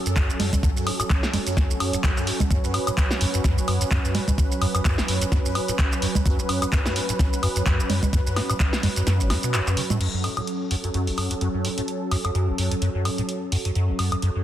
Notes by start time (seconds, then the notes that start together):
Already playing: F#3 C#4 A4
0.06 F#2, closed hi-hat, shaker
0.16 kick, clap, closed hi-hat, shaker
0.29 F#1, shaker
0.40 F#2, open hi-hat, low conga
0.53 F#2, kick, closed hi-hat, low conga, shaker
0.63 F#2, kick, closed hi-hat, shaker
0.76 F#2, shaker
0.86 A2, open hi-hat, high woodblock
1.00 A2, closed hi-hat, high woodblock, shaker
1.10 kick, clap, closed hi-hat, shaker
1.23 snare, shaker
1.33 F#2, open hi-hat, low conga
1.47 F#2, closed hi-hat, shaker
1.57 kick, snare, closed hi-hat, shaker
1.70 F#1, shaker
1.80 F#2, open hi-hat, high woodblock
1.93 F#2, closed hi-hat, shaker
2.04 F#2, kick, clap, closed hi-hat, shaker
2.17 F#2, clap, shaker
2.27 A2, open hi-hat
2.40 A2, kick, closed hi-hat, low conga, shaker
2.51 F#2 B4, kick, closed hi-hat, shaker
2.64 F#2, shaker
2.74 A2, open hi-hat, high woodblock
2.87 A2, closed hi-hat, high woodblock, shaker
2.97 kick, clap, closed hi-hat, shaker
3.11 snare, shaker
3.21 F#2, open hi-hat
3.34 F#2, closed hi-hat, shaker
3.44 F#2, kick, snare, closed hi-hat, shaker
3.57 F#1, shaker
3.68 F#2, open hi-hat, high woodblock
3.81 F#2, closed hi-hat, shaker
3.91 F#2, kick, clap, closed hi-hat, shaker
4.04 F#2, shaker
4.15 A2, open hi-hat, low conga
4.28 A2, kick, closed hi-hat, low conga, shaker
4.38 kick, closed hi-hat, shaker
4.52 shaker
4.61 F#2, open hi-hat, high woodblock
4.75 F#2, closed hi-hat, high woodblock, shaker
4.85 F#2, kick, clap, closed hi-hat, shaker
4.98 F#1, snare, shaker
5.08 F#2, open hi-hat
5.21 F#2, closed hi-hat, shaker
5.32 F#2, kick, snare, closed hi-hat, shaker
5.45 F#2, shaker
5.55 A2, open hi-hat, high woodblock
5.68 A2, closed hi-hat, shaker
5.79 kick, clap, closed hi-hat, shaker
5.92 clap, shaker
6.02 F#2, open hi-hat
6.15 F#2, kick, closed hi-hat, low conga, shaker
6.26 F#2, kick, closed hi-hat, shaker
6.39 F#1, shaker
6.49 F#2, open hi-hat, high woodblock
6.62 F#2, closed hi-hat, high woodblock, shaker
6.72 F#2, kick, clap, closed hi-hat, shaker
6.86 F#2, snare, shaker
6.96 A2, open hi-hat
7.09 A2, closed hi-hat, shaker
7.19 kick, snare, closed hi-hat, shaker
7.33 shaker
7.43 F#2, open hi-hat, high woodblock
7.56 F#2, closed hi-hat, shaker
7.66 F#2, kick, clap, closed hi-hat, shaker
7.79 F#1, shaker
7.90 F#2, open hi-hat, low conga
8.03 kick, closed hi-hat, low conga, shaker
8.13 F#2, kick, closed hi-hat, shaker
8.26 F#2, shaker
8.36 A2, snare, open hi-hat, high woodblock
8.50 A2, closed hi-hat, high woodblock, shaker
8.60 kick, clap, closed hi-hat, shaker
8.73 snare, shaker
8.83 F#2, open hi-hat, low conga
8.96 F#2, closed hi-hat, shaker
9.07 F#2, snare, closed hi-hat, shaker
9.20 F#1, shaker
9.30 F#2, snare, open hi-hat, high woodblock
9.43 B2, closed hi-hat, shaker
9.54 F#2, clap, closed hi-hat, shaker
9.67 F#2, clap, shaker
9.77 C#3, open hi-hat
9.90 A2, closed hi-hat, low conga, shaker
10.00 F#2 F#3 C#4 A4, closed hi-hat, crash
10.14 F#2
10.24 A2, open hi-hat, high woodblock
10.37 A2, closed hi-hat, high woodblock
10.47 closed hi-hat
10.71 F#2, open hi-hat
10.84 F#2, closed hi-hat
10.94 F#2, closed hi-hat
11.07 F#1, open hi-hat
11.18 F#2, open hi-hat, high woodblock
11.31 F#2, closed hi-hat
11.41 F#2, closed hi-hat
11.54 F#2
11.65 A2, open hi-hat
11.78 A2, closed hi-hat
11.88 closed hi-hat
12.11 F#2, open hi-hat, high woodblock
12.24 F#2, closed hi-hat, high woodblock
12.35 F#2, closed hi-hat
12.48 F#1
12.58 F#2, open hi-hat
12.71 F#2, closed hi-hat
12.82 F#2, closed hi-hat
12.95 F#2
13.05 A2, open hi-hat, high woodblock
13.18 A2, closed hi-hat
13.29 closed hi-hat
13.52 F#2, open hi-hat
13.65 F#2, closed hi-hat
13.75 F#2, closed hi-hat
13.89 F#1
13.99 F#2, open hi-hat, high woodblock
14.12 F#2, closed hi-hat, high woodblock
14.22 F#2, closed hi-hat
14.36 F#2